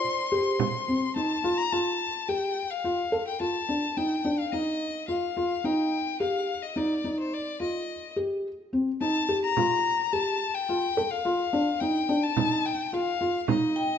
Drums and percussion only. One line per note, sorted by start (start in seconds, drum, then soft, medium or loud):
0.04 frame drum soft
0.32 frame drum soft
0.59 frame drum medium
0.87 frame drum soft
9.57 frame drum medium
10.97 frame drum soft
12.37 frame drum medium
13.48 frame drum medium